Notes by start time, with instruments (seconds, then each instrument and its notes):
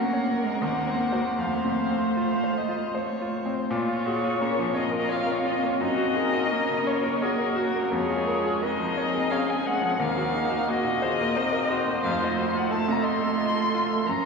Already playing: grand piano F#2 C#3 A#3 F#4, cello A#3, viola A#4, violin A#4 F#5
0.13 grand piano C#5
0.38 grand piano A#4
0.43 cello G#3
0.61 grand piano D#2, cello A#3, viola C5, violin F#5
0.87 grand piano C4
1.12 grand piano F#4 C5
1.38 grand piano F2, cello A3, violin C5 F5, viola C5
1.64 grand piano C3
1.91 grand piano C4
2.17 grand piano F4, violin F5
2.44 grand piano C5
2.58 violin D#5
2.69 grand piano F4
2.95 grand piano C5, violin C#5
3.22 grand piano F4
3.46 grand piano C4
3.54 violin C5
3.70 grand piano A#2, cello A#3, viola F4, violin F4 C#5
3.88 grand piano F4
4.06 grand piano F#4, viola G#4
4.24 grand piano F4
4.41 grand piano A#3, cello C#4, violin F4, viola A#4
4.59 grand piano F3
4.75 cello C4, grand piano C#5, violin D#5
4.92 grand piano A#4
5.09 viola F4, grand piano C#5, violin F5
5.27 grand piano A#4
5.31 violin C#5
5.45 grand piano F4, violin D#5
5.63 grand piano A#3, violin C#5
5.81 grand piano F#2, violin D#4 D#5, viola F#4
5.98 grand piano F#4
6.16 grand piano G#4, viola A#4
6.33 grand piano F#4
6.51 grand piano A#3, cello A#3, violin C#4
6.69 grand piano C#3
6.87 violin C#5, grand piano C#5
7.04 grand piano A#4
7.22 violin F#4 A#4, viola G#4, grand piano C#5
7.39 grand piano A#4
7.56 grand piano F#4, viola F#4
7.75 grand piano A#3
7.92 grand piano F2, cello G#3, violin F4 C#5, viola G#4
8.10 grand piano G#4
8.27 grand piano A#4
8.46 grand piano G#4
8.62 grand piano G#3, cello C4, violin D#4 D#5, viola A#4
8.79 grand piano F3
8.97 grand piano C#5
9.14 grand piano G#4
9.30 violin C#4 F5, viola G#4, grand piano C#5
9.49 grand piano G#4, violin G#5
9.66 grand piano G#3, violin F#5
9.81 grand piano F3
10.00 grand piano D#2, cello A#3, violin C4 F5, viola A#4
10.17 grand piano F#4
10.35 violin D#4, grand piano G#4
10.50 grand piano F#4
10.66 cello A#3, grand piano A#3, viola F#4, violin F#4 D#5
10.84 grand piano A#2
11.02 violin F4, viola G#4, grand piano C5
11.21 grand piano A#4
11.35 cello C4, violin D#4, viola A#4, grand piano C5
11.52 grand piano A#4
11.69 grand piano F#4, viola C5
11.87 grand piano A#3
12.03 grand piano F2, cello A3, violin D#4 F5
12.22 grand piano F4, violin D#5
12.38 grand piano F#4, violin F5
12.55 grand piano F4, violin F#5
12.70 grand piano A3, viola A4, violin A5
12.88 grand piano C3, violin A#5
13.03 grand piano D#5, violin C6
13.21 grand piano A4
13.38 viola F4, grand piano D#5
13.55 grand piano A4
13.69 viola A4
13.74 grand piano F4
13.91 grand piano A3
14.05 cello F3, violin C#4 A#5, viola A#4
14.09 grand piano F#2